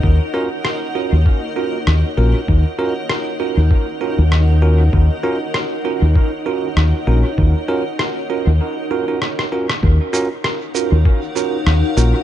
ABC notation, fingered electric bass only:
X:1
M:4/4
L:1/16
Q:"Swing 16ths" 1/4=98
K:Ebm
V:1 name="Fingered electric bass" clef=bass
E,, z6 E,, z4 E,, z B,,, z | E,, z6 E,, z3 E,,4- E,, | E,, z6 E,, z4 E,, z B,,, z | E,, z6 E,, z8 |
E,, z6 E,, z4 E,, z B,,, z |]